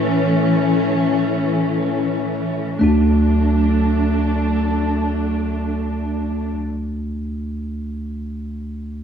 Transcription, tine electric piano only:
0, 0, Header, 1, 2, 480
1, 0, Start_track
1, 0, Key_signature, 2, "major"
1, 0, Tempo, 500000
1, 8674, End_track
2, 0, Start_track
2, 0, Title_t, "Tine electric piano"
2, 0, Program_c, 0, 4
2, 0, Control_c, 0, 64, 127
2, 0, Note_on_c, 0, 45, 38
2, 0, Note_on_c, 0, 52, 35
2, 0, Note_on_c, 0, 61, 44
2, 0, Note_on_c, 0, 73, 65
2, 1357, Note_off_c, 0, 73, 0
2, 2653, Note_off_c, 0, 45, 0
2, 2654, Note_off_c, 0, 52, 0
2, 2657, Note_off_c, 0, 61, 0
2, 2680, Note_on_c, 0, 57, 44
2, 2699, Note_on_c, 0, 62, 44
2, 2701, Note_on_c, 0, 38, 44
2, 2713, Control_c, 0, 64, 0
2, 2722, Note_on_c, 0, 66, 46
2, 2900, Control_c, 0, 64, 127
2, 6236, Note_off_c, 0, 57, 0
2, 6254, Note_off_c, 0, 62, 0
2, 6257, Note_off_c, 0, 38, 0
2, 6278, Note_off_c, 0, 66, 0
2, 8674, End_track
0, 0, End_of_file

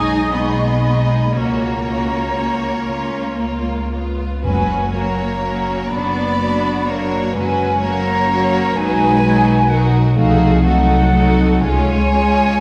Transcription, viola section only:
0, 0, Header, 1, 2, 480
1, 0, Start_track
1, 0, Key_signature, 6, "major"
1, 0, Tempo, 1001669
1, 636, Tempo, 1036269
1, 637, Time_signature, 6, 3, 24, 8
1, 2076, Tempo, 991736
1, 2556, Tempo, 955414
1, 3996, Tempo, 931677
1, 4956, Tempo, 988468
1, 6143, End_track
2, 0, Start_track
2, 0, Title_t, "Viola section"
2, 0, Program_c, 0, 48
2, 0, Note_on_c, 0, 56, 54
2, 0, Note_on_c, 0, 63, 53
2, 150, Note_off_c, 0, 63, 0
2, 152, Note_off_c, 0, 56, 0
2, 159, Note_on_c, 0, 56, 46
2, 161, Note_on_c, 0, 63, 43
2, 390, Note_off_c, 0, 56, 0
2, 390, Note_off_c, 0, 63, 0
2, 401, Note_on_c, 0, 63, 48
2, 403, Note_on_c, 0, 56, 45
2, 636, Note_off_c, 0, 63, 0
2, 638, Note_off_c, 0, 56, 0
2, 642, Note_on_c, 0, 58, 49
2, 644, Note_on_c, 0, 61, 50
2, 877, Note_off_c, 0, 58, 0
2, 878, Note_off_c, 0, 61, 0
2, 883, Note_on_c, 0, 61, 44
2, 885, Note_on_c, 0, 58, 44
2, 1115, Note_off_c, 0, 61, 0
2, 1116, Note_off_c, 0, 58, 0
2, 1123, Note_on_c, 0, 61, 41
2, 1124, Note_on_c, 0, 58, 44
2, 1348, Note_off_c, 0, 61, 0
2, 1352, Note_off_c, 0, 58, 0
2, 1354, Note_on_c, 0, 61, 58
2, 1577, Note_off_c, 0, 61, 0
2, 1597, Note_on_c, 0, 58, 50
2, 1840, Note_off_c, 0, 58, 0
2, 1846, Note_on_c, 0, 59, 40
2, 2073, Note_on_c, 0, 54, 48
2, 2076, Note_on_c, 0, 61, 44
2, 2081, Note_off_c, 0, 59, 0
2, 2309, Note_off_c, 0, 54, 0
2, 2310, Note_off_c, 0, 61, 0
2, 2315, Note_on_c, 0, 54, 40
2, 2316, Note_on_c, 0, 61, 42
2, 2550, Note_off_c, 0, 54, 0
2, 2550, Note_off_c, 0, 61, 0
2, 2562, Note_on_c, 0, 54, 45
2, 2562, Note_on_c, 0, 61, 44
2, 2796, Note_off_c, 0, 54, 0
2, 2798, Note_off_c, 0, 61, 0
2, 2802, Note_on_c, 0, 54, 48
2, 2804, Note_on_c, 0, 62, 46
2, 3035, Note_off_c, 0, 62, 0
2, 3037, Note_off_c, 0, 54, 0
2, 3041, Note_on_c, 0, 62, 42
2, 3042, Note_on_c, 0, 54, 43
2, 3269, Note_off_c, 0, 62, 0
2, 3270, Note_off_c, 0, 54, 0
2, 3275, Note_on_c, 0, 62, 47
2, 3276, Note_on_c, 0, 54, 46
2, 3511, Note_off_c, 0, 54, 0
2, 3511, Note_off_c, 0, 62, 0
2, 3522, Note_on_c, 0, 54, 49
2, 3522, Note_on_c, 0, 61, 48
2, 3755, Note_off_c, 0, 54, 0
2, 3755, Note_off_c, 0, 61, 0
2, 3761, Note_on_c, 0, 54, 50
2, 3762, Note_on_c, 0, 61, 45
2, 3993, Note_off_c, 0, 54, 0
2, 3993, Note_off_c, 0, 61, 0
2, 3998, Note_on_c, 0, 61, 52
2, 4000, Note_on_c, 0, 54, 54
2, 4224, Note_off_c, 0, 54, 0
2, 4230, Note_on_c, 0, 54, 51
2, 4233, Note_off_c, 0, 61, 0
2, 4233, Note_on_c, 0, 63, 60
2, 4467, Note_off_c, 0, 54, 0
2, 4468, Note_off_c, 0, 63, 0
2, 4480, Note_on_c, 0, 54, 58
2, 4481, Note_on_c, 0, 63, 54
2, 4711, Note_off_c, 0, 54, 0
2, 4712, Note_off_c, 0, 63, 0
2, 4719, Note_on_c, 0, 54, 51
2, 4722, Note_on_c, 0, 63, 55
2, 4953, Note_off_c, 0, 54, 0
2, 4955, Note_off_c, 0, 63, 0
2, 4959, Note_on_c, 0, 57, 60
2, 4960, Note_on_c, 0, 63, 53
2, 5185, Note_off_c, 0, 57, 0
2, 5185, Note_off_c, 0, 63, 0
2, 5191, Note_on_c, 0, 63, 53
2, 5195, Note_on_c, 0, 57, 54
2, 5420, Note_off_c, 0, 63, 0
2, 5421, Note_off_c, 0, 57, 0
2, 5425, Note_on_c, 0, 63, 52
2, 5427, Note_on_c, 0, 57, 54
2, 5658, Note_off_c, 0, 63, 0
2, 5659, Note_off_c, 0, 57, 0
2, 5665, Note_on_c, 0, 61, 51
2, 5667, Note_on_c, 0, 56, 52
2, 5901, Note_off_c, 0, 61, 0
2, 5903, Note_off_c, 0, 56, 0
2, 5911, Note_on_c, 0, 61, 51
2, 5912, Note_on_c, 0, 56, 47
2, 6143, Note_off_c, 0, 56, 0
2, 6143, Note_off_c, 0, 61, 0
2, 6143, End_track
0, 0, End_of_file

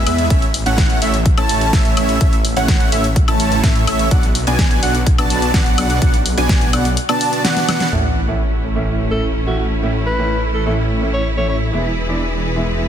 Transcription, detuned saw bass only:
0, 0, Header, 1, 2, 480
1, 0, Start_track
1, 0, Key_signature, 3, "major"
1, 0, Tempo, 476190
1, 306, Time_signature, 4, 2, 24, 8
1, 12985, End_track
2, 0, Start_track
2, 0, Title_t, "Detuned saw bass"
2, 0, Program_c, 0, 39
2, 66, Note_on_c, 0, 40, 99
2, 282, Note_off_c, 0, 40, 0
2, 306, Note_on_c, 0, 33, 100
2, 642, Note_off_c, 0, 33, 0
2, 666, Note_on_c, 0, 33, 94
2, 1002, Note_off_c, 0, 33, 0
2, 1026, Note_on_c, 0, 33, 101
2, 1362, Note_off_c, 0, 33, 0
2, 1386, Note_on_c, 0, 33, 101
2, 1722, Note_off_c, 0, 33, 0
2, 1746, Note_on_c, 0, 33, 95
2, 1962, Note_off_c, 0, 33, 0
2, 1986, Note_on_c, 0, 33, 98
2, 2202, Note_off_c, 0, 33, 0
2, 2226, Note_on_c, 0, 33, 99
2, 2562, Note_off_c, 0, 33, 0
2, 2586, Note_on_c, 0, 33, 98
2, 2922, Note_off_c, 0, 33, 0
2, 2946, Note_on_c, 0, 33, 95
2, 3282, Note_off_c, 0, 33, 0
2, 3306, Note_on_c, 0, 33, 96
2, 3642, Note_off_c, 0, 33, 0
2, 3666, Note_on_c, 0, 45, 98
2, 3882, Note_off_c, 0, 45, 0
2, 3906, Note_on_c, 0, 33, 98
2, 4122, Note_off_c, 0, 33, 0
2, 4146, Note_on_c, 0, 35, 100
2, 4482, Note_off_c, 0, 35, 0
2, 4506, Note_on_c, 0, 35, 96
2, 4842, Note_off_c, 0, 35, 0
2, 4867, Note_on_c, 0, 35, 98
2, 5202, Note_off_c, 0, 35, 0
2, 5226, Note_on_c, 0, 35, 99
2, 5562, Note_off_c, 0, 35, 0
2, 5586, Note_on_c, 0, 35, 102
2, 5802, Note_off_c, 0, 35, 0
2, 5826, Note_on_c, 0, 35, 99
2, 6042, Note_off_c, 0, 35, 0
2, 6066, Note_on_c, 0, 35, 100
2, 6402, Note_off_c, 0, 35, 0
2, 6426, Note_on_c, 0, 35, 95
2, 6762, Note_off_c, 0, 35, 0
2, 6786, Note_on_c, 0, 35, 99
2, 7026, Note_off_c, 0, 35, 0
2, 7986, Note_on_c, 0, 33, 83
2, 11802, Note_off_c, 0, 33, 0
2, 11826, Note_on_c, 0, 28, 84
2, 12985, Note_off_c, 0, 28, 0
2, 12985, End_track
0, 0, End_of_file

